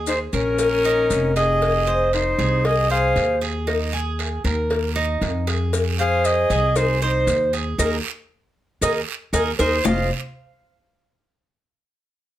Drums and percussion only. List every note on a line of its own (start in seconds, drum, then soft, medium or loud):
0.07 cowbell medium
0.07 short guiro medium
0.07 maracas medium
0.33 short guiro medium
0.33 maracas soft
0.59 cowbell loud
0.59 long guiro medium
0.59 maracas medium
0.84 maracas soft
1.10 cowbell medium
1.10 short guiro medium
1.10 maracas medium
1.36 cowbell medium
1.36 short guiro medium
1.36 maracas soft
1.61 cowbell loud
1.61 long guiro medium
2.13 cowbell medium
2.13 short guiro medium
2.39 short guiro medium
2.65 cowbell loud
2.65 long guiro medium
3.16 cowbell medium
3.16 short guiro medium
3.42 short guiro medium
3.68 cowbell loud
3.68 long guiro medium
4.19 cowbell medium
4.19 short guiro medium
4.45 short guiro medium
4.70 cowbell loud
4.70 long guiro medium
5.22 cowbell medium
5.22 short guiro medium
5.47 cowbell medium
5.47 short guiro medium
5.73 cowbell loud
5.73 long guiro medium
5.73 maracas medium
5.99 maracas soft
6.24 cowbell medium
6.24 short guiro medium
6.24 maracas medium
6.50 short guiro medium
6.50 maracas soft
6.76 cowbell loud
6.76 long guiro medium
6.76 maracas medium
7.02 maracas soft
7.27 cowbell medium
7.27 short guiro medium
7.27 maracas medium
7.53 short guiro medium
7.53 maracas soft
7.79 cowbell loud
7.79 long guiro loud
7.79 maracas loud
8.82 cowbell loud
8.82 long guiro loud
8.82 maracas loud
9.33 cowbell loud
9.33 long guiro loud
9.33 maracas loud
9.59 cowbell loud
9.59 long guiro loud
9.59 maracas medium
9.85 low bongo loud
9.85 long guiro medium
9.85 maracas medium